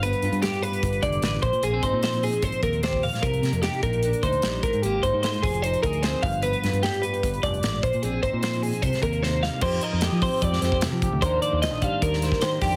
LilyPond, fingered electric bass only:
\new Staff \with { instrumentName = "Fingered electric bass" } { \clef bass \time 4/4 \key c \minor \tempo 4 = 150 g,,8 g,16 g,8 r8. g,,8 f,,8 a,,8 bes,,16 bes,16 | bes,,8 aes,,16 bes,4~ bes,16 aes,,16 r16 ees,4. | c,8 c16 f,8 r16 bes,,4 d,8 bes,,8 aes,,16 aes,16 | aes,,8 g,,16 aes,8. f,,4 d,4 g,,8~ |
g,,8 g,16 g,8 r8. g,,8 f,,8 a,,8 bes,,16 bes,16 | bes,,8 aes,,16 bes,4~ bes,16 c,16 r16 ees,4. | f,8 r16 f,8 f8 r16 f,8 f,8. f8 d,16 | ees,8 r16 ees,8 bes,,8 r16 ees,4 ees8 f,8 | }